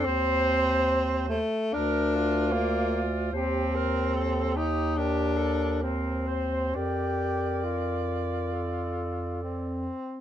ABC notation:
X:1
M:4/4
L:1/8
Q:1/4=71
K:Bb
V:1 name="Clarinet"
c3 z B2 d d | c B A G B2 c c | B4 A3 z |]
V:2 name="Alto saxophone"
c3 z B F3 | G B A G G A B c | d6- d z |]
V:3 name="Tenor saxophone"
C3 A, D2 B, z | C3 E D2 C2 | G2 F4 C2 |]
V:4 name="Bass clarinet" clef=bass
E,,3 z D,,4 | E,,8 | F,,6- F,, z |]